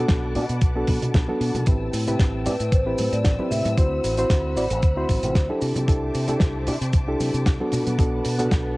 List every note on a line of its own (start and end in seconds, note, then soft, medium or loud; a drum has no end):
0.00 0.32 B3 medium
0.00 0.33 D4 medium
0.00 0.33 F#4 medium
0.00 0.33 A4 loud
0.00 1.65 B4 medium
0.00 1.65 F#5 medium
0.00 3.74 A5 medium
0.00 1.64 D6 medium
0.09 0.37 B1 medium
0.09 kick loud
0.09 snare loud
0.09 closed hi-hat medium
0.35 0.47 B2 loud
0.35 0.43 B3 medium
0.35 0.43 D4 medium
0.35 0.43 F#4 medium
0.35 0.43 D5 medium
0.35 open hi-hat medium
0.49 0.59 B2 loud
0.49 closed hi-hat medium
0.61 0.83 B1 medium
0.61 kick loud
0.61 closed hi-hat medium
0.76 1.25 B3 medium
0.76 1.25 D4 medium
0.76 1.25 F#4 medium
0.76 1.26 A4 loud
0.87 0.99 B2 medium
0.87 kick medium
0.87 open hi-hat loud
0.87 high conga medium
1.02 1.12 B2 medium
1.02 closed hi-hat medium
1.02 low conga medium
1.14 1.25 B1 medium
1.14 kick loud
1.14 snare loud
1.14 closed hi-hat medium
1.28 1.64 B3 medium
1.28 1.64 D4 medium
1.28 1.64 F#4 medium
1.28 1.64 A4 loud
1.28 high conga medium
1.41 1.52 B2 medium
1.41 open hi-hat loud
1.55 1.64 B2 medium
1.55 closed hi-hat medium
1.55 high conga medium
1.55 low conga medium
1.66 1.88 A1 medium
1.66 2.04 C4 medium
1.66 5.58 C4 medium
1.66 2.04 E4 medium
1.66 2.04 G4 medium
1.66 2.04 B4 medium
1.66 3.76 G5 medium
1.66 5.58 E6 medium
1.66 kick loud
1.66 closed hi-hat medium
1.66 shaker medium
1.93 2.14 A2 medium
1.93 open hi-hat loud
1.93 shaker medium
2.07 2.43 C4 medium
2.07 2.43 E4 medium
2.07 2.43 G4 medium
2.07 2.44 B4 loud
2.07 closed hi-hat medium
2.07 low conga medium
2.07 shaker medium
2.19 2.48 A1 medium
2.19 kick loud
2.19 snare loud
2.19 closed hi-hat medium
2.19 shaker medium
2.46 2.57 A2 loud
2.46 2.53 C4 medium
2.46 2.54 E4 medium
2.46 2.54 G4 medium
2.46 2.73 B4 medium
2.46 2.54 D5 medium
2.46 open hi-hat medium
2.46 shaker medium
2.60 2.70 A2 loud
2.60 closed hi-hat medium
2.60 shaker medium
2.72 2.93 A1 medium
2.72 3.14 C5 medium
2.72 kick loud
2.72 closed hi-hat medium
2.72 shaker soft
2.86 3.35 C4 medium
2.86 3.36 E4 medium
2.86 3.36 G4 medium
2.86 3.36 B4 loud
2.98 3.10 A2 medium
2.98 open hi-hat medium
2.98 high conga medium
2.98 shaker medium
3.12 3.22 A2 medium
3.12 3.48 D5 medium
3.12 closed hi-hat medium
3.12 shaker medium
3.25 3.36 A1 medium
3.25 kick loud
3.25 snare loud
3.25 closed hi-hat medium
3.25 shaker medium
3.39 3.75 C4 medium
3.39 3.75 E4 medium
3.39 3.75 G4 medium
3.39 3.75 B4 medium
3.39 high conga medium
3.51 3.62 A2 medium
3.51 3.63 E5 loud
3.51 open hi-hat medium
3.51 low conga medium
3.51 shaker medium
3.65 3.75 A2 medium
3.65 closed hi-hat medium
3.65 high conga medium
3.65 shaker medium
3.77 3.99 D2 loud
3.77 4.14 C4 medium
3.77 4.15 E4 medium
3.77 4.15 F#4 medium
3.77 5.58 C5 medium
3.77 4.15 C5 loud
3.77 5.60 F#5 medium
3.77 5.60 B5 medium
3.77 kick loud
3.77 closed hi-hat medium
3.77 shaker soft
4.04 4.25 A1 medium
4.04 open hi-hat loud
4.04 shaker medium
4.17 4.54 C4 medium
4.17 4.54 E4 medium
4.17 4.54 F#4 medium
4.17 4.54 C5 loud
4.17 closed hi-hat medium
4.17 shaker medium
4.30 4.56 D2 medium
4.30 kick loud
4.30 snare loud
4.30 closed hi-hat medium
4.30 shaker medium
4.56 4.67 A1 medium
4.56 4.64 C4 medium
4.56 4.64 E4 medium
4.56 4.64 F#4 medium
4.56 4.65 D5 medium
4.56 open hi-hat medium
4.56 shaker medium
4.70 4.80 A1 loud
4.70 closed hi-hat medium
4.70 shaker medium
4.82 5.04 D2 medium
4.82 kick loud
4.82 closed hi-hat medium
4.82 shaker medium
4.97 5.46 C4 medium
4.97 5.46 E4 medium
4.97 5.46 F#4 medium
4.97 5.47 C5 loud
5.09 5.20 A1 medium
5.09 kick medium
5.09 open hi-hat loud
5.09 high conga medium
5.09 shaker medium
5.23 5.33 A1 loud
5.23 closed hi-hat medium
5.23 low conga medium
5.23 shaker medium
5.35 5.46 D2 loud
5.35 kick loud
5.35 snare loud
5.35 closed hi-hat medium
5.35 shaker medium
5.49 5.85 D4 medium
5.49 5.85 E4 medium
5.49 5.85 G4 medium
5.49 5.85 A4 medium
5.49 high conga medium
5.61 5.73 C3 medium
5.61 7.71 C5 medium
5.61 7.70 E5 medium
5.61 7.71 A5 medium
5.61 8.77 D6 medium
5.61 open hi-hat loud
5.61 shaker medium
5.75 5.86 C3 medium
5.75 closed hi-hat medium
5.75 high conga medium
5.75 low conga medium
5.75 shaker medium
5.88 6.09 C2 medium
5.88 6.25 D4 medium
5.88 6.25 E4 medium
5.88 6.25 G4 medium
5.88 6.25 A4 loud
5.88 kick loud
5.88 closed hi-hat medium
5.88 shaker soft
6.15 6.35 C3 medium
6.15 open hi-hat loud
6.15 shaker medium
6.28 6.64 D4 medium
6.28 6.64 E4 medium
6.28 6.64 G4 medium
6.28 6.65 A4 loud
6.28 closed hi-hat medium
6.28 low conga medium
6.28 shaker medium
6.40 6.69 C2 medium
6.40 kick loud
6.40 snare loud
6.40 closed hi-hat medium
6.40 shaker medium
6.67 6.78 C3 medium
6.67 6.75 D4 medium
6.67 6.75 E4 medium
6.67 6.75 G4 medium
6.67 6.75 D5 medium
6.67 open hi-hat loud
6.67 shaker medium
6.81 6.91 C3 loud
6.81 closed hi-hat medium
6.81 shaker medium
6.93 7.14 C2 medium
6.93 kick loud
6.93 closed hi-hat medium
6.93 shaker medium
7.07 7.57 D4 medium
7.07 7.57 E4 medium
7.07 7.57 G4 medium
7.07 7.57 A4 loud
7.20 7.31 C3 medium
7.20 open hi-hat loud
7.20 high conga medium
7.20 shaker medium
7.34 7.44 C3 loud
7.34 closed hi-hat medium
7.34 shaker medium
7.46 7.57 C2 medium
7.46 kick loud
7.46 snare loud
7.46 closed hi-hat medium
7.46 shaker medium
7.60 7.96 B3 medium
7.60 7.96 D4 medium
7.60 7.96 F#4 medium
7.60 7.96 A4 loud
7.60 high conga medium
7.72 7.84 B2 loud
7.72 8.77 B4 medium
7.72 8.77 F#5 medium
7.72 8.77 A5 medium
7.72 open hi-hat medium
7.72 low conga medium
7.72 shaker medium
7.87 7.96 B2 medium
7.87 closed hi-hat medium
7.87 high conga medium
7.87 shaker medium
7.98 8.20 B1 medium
7.98 8.36 B3 medium
7.98 8.36 D4 medium
7.98 8.36 F#4 medium
7.98 8.36 A4 loud
7.98 kick loud
7.98 closed hi-hat medium
7.98 shaker medium
8.25 8.46 B2 medium
8.25 open hi-hat loud
8.25 shaker medium
8.39 8.75 B3 medium
8.39 8.75 D4 medium
8.39 8.75 F#4 medium
8.39 8.75 A4 loud
8.39 closed hi-hat medium
8.39 low conga medium
8.39 shaker medium
8.51 8.77 B1 medium
8.51 kick loud
8.51 snare loud
8.51 closed hi-hat medium
8.51 shaker medium